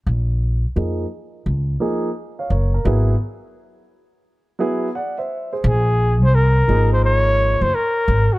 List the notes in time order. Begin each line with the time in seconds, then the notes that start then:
0.06 A#1
0.76 F2 F3 A#3 D#4 G#4
1.46 C#2
1.80 F3 A#3 D#4 G#4
2.39 C#5 F5
2.50 F#1 A#4 C#5
2.74 A#4
2.85 G#1 F#3 B3 E4 G#4
4.59 F#3 B3 E4 G#4
4.95 D5 F#5
5.18 C5 E5
5.53 G#4 C5
5.64 A#1 G#4
6.22 C2 C5
6.35 A#4
6.68 G#1 F3 A#3 D#4 G#4
6.93 C5
7.05 C#5
7.61 F#1 C5
7.75 A#4
8.08 G#1
8.33 F#4